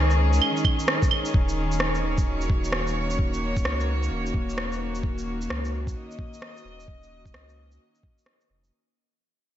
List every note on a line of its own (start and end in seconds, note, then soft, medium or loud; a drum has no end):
0.00 0.40 C#2 medium
0.00 8.72 D#3 medium
0.00 1.33 G#3 medium
0.00 8.73 C#4 medium
0.00 2.93 G#4 medium
0.00 1.34 C#5 medium
0.11 shaker soft
0.33 shaker medium
0.42 claves medium
0.57 shaker soft
0.65 kick loud
0.65 claves medium
0.80 shaker medium
0.88 cross-stick loud
1.02 kick loud
1.02 shaker soft
1.11 claves medium
1.26 shaker medium
1.34 3.64 D#1 medium
1.34 kick loud
1.49 shaker soft
1.72 8.72 A#3 medium
1.72 shaker medium
1.78 6.11 C#5 medium
1.78 cross-stick loud
1.95 shaker soft
2.18 8.72 F#4 medium
2.18 kick loud
2.18 shaker medium
2.41 shaker soft
2.50 kick loud
2.64 shaker medium
2.73 cross-stick loud
2.87 shaker soft
3.10 shaker medium
3.19 kick loud
3.34 shaker soft
3.57 kick loud
3.57 shaker medium
3.65 4.10 C#2 medium
3.65 cross-stick loud
3.80 shaker soft
4.03 shaker medium
4.11 4.33 D#1 medium
4.26 shaker soft
4.34 5.48 D#1 loud
4.34 kick loud
4.49 shaker medium
4.58 cross-stick loud
4.72 shaker soft
4.95 shaker medium
5.03 kick loud
5.18 shaker soft
5.42 shaker medium
5.50 5.95 C#2 medium
5.50 cross-stick loud
5.65 shaker soft
5.87 kick loud
5.87 shaker medium
5.95 8.72 D#5 medium
6.11 shaker soft
6.19 kick loud
6.34 shaker medium
6.42 cross-stick loud
6.57 shaker soft
6.65 7.33 D#1 medium
6.80 shaker medium
6.88 kick loud
7.03 shaker soft
7.26 kick loud
7.26 shaker soft
7.34 7.79 C#2 medium
7.34 cross-stick loud
7.49 shaker soft
7.72 shaker soft
7.95 shaker soft
8.03 kick loud
8.18 shaker soft
8.26 cross-stick loud
8.41 shaker soft
8.50 8.71 F1 medium
8.64 shaker medium